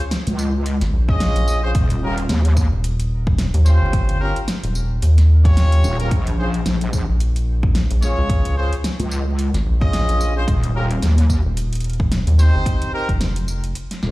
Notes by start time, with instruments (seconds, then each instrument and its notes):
0.11 snare, closed hi-hat
0.27 wobble bass C#2, closed hi-hat
0.39 tambourine
0.66 closed hi-hat
0.81 analog synth bass G#1, snare, closed hi-hat
0.93 analog synth bass A#1
1.09 horn section C#4 F4 G#4 D#5, kick
1.20 snare, closed hi-hat
1.36 analog synth bass A#1, closed hi-hat
1.48 tambourine
1.63 horn section C#4 F4 G#4 C5
1.75 wobble bass D#1, kick, closed hi-hat
1.90 closed hi-hat
2.02 horn section C#4 F4 G4 A#4
2.18 closed hi-hat
2.29 wobble bass D#2, snare, closed hi-hat
2.45 closed hi-hat
2.57 kick, tambourine
2.72 analog synth bass D#1
2.84 closed hi-hat
3.00 closed hi-hat
3.27 kick
3.38 snare, closed hi-hat
3.54 analog synth bass D#2, closed hi-hat
3.66 horn section C#4 F4 G4 C5, snare, tambourine
3.82 analog synth bass G1
3.93 kick, closed hi-hat
4.09 closed hi-hat
4.20 horn section C#4 F4 G4 A#4
4.36 closed hi-hat
4.48 snare, closed hi-hat
4.63 analog synth bass D#1, closed hi-hat
4.75 tambourine
5.02 analog synth bass D#2, closed hi-hat
5.18 snare, closed hi-hat
5.45 horn section C#4 F4 G4 C#5, kick, closed hi-hat
5.57 snare, closed hi-hat
5.72 closed hi-hat
5.84 wobble bass D#1, tambourine
5.99 horn section C#4 F4 G4 A#4, closed hi-hat
6.11 wobble bass A#1, kick, closed hi-hat
6.27 closed hi-hat
6.38 horn section C#4 F4 G#4 C5
6.54 closed hi-hat
6.66 wobble bass A#1, snare, closed hi-hat
6.81 closed hi-hat
6.93 kick, tambourine
7.09 analog synth bass A#1
7.20 closed hi-hat
7.36 closed hi-hat
7.63 kick
7.75 snare, closed hi-hat
7.91 analog synth bass A#1, closed hi-hat
8.02 horn section C#4 F4 G#4 C#5, snare, tambourine
8.18 analog synth bass C#2
8.29 kick, closed hi-hat
8.45 closed hi-hat
8.57 horn section C#4 F4 G#4 C5
8.73 closed hi-hat
8.84 snare, closed hi-hat
9.00 wobble bass C#2, closed hi-hat
9.12 tambourine
9.39 closed hi-hat
9.54 analog synth bass G#1, snare, closed hi-hat
9.66 analog synth bass A#1
9.81 horn section C#4 F4 G#4 D#5, kick
9.93 snare, closed hi-hat
10.09 analog synth bass A#1, closed hi-hat
10.21 tambourine
10.36 horn section C#4 F4 G#4 C5
10.48 wobble bass D#1, kick, closed hi-hat
10.64 closed hi-hat
10.75 horn section C#4 F4 G4 A#4
10.91 closed hi-hat
11.02 wobble bass D#2, snare, closed hi-hat
11.18 closed hi-hat
11.30 kick, tambourine
11.45 analog synth bass D#1
11.57 closed hi-hat
11.73 closed hi-hat
11.75 closed hi-hat
11.80 closed hi-hat
11.84 closed hi-hat
11.90 closed hi-hat
11.93 closed hi-hat
12.00 kick
12.12 snare, closed hi-hat
12.27 analog synth bass D#2, closed hi-hat
12.39 horn section C4 D#4 G4 C5, snare, tambourine
12.55 analog synth bass G1
12.66 kick, closed hi-hat
12.82 closed hi-hat
12.93 horn section C4 D#4 G4 A#4
13.09 analog synth bass F1, kick, closed hi-hat
13.21 analog synth bass F1, snare, closed hi-hat
13.36 closed hi-hat
13.48 tambourine
13.64 closed hi-hat
13.75 closed hi-hat
13.91 snare, closed hi-hat
14.03 wobble bass D#1, snare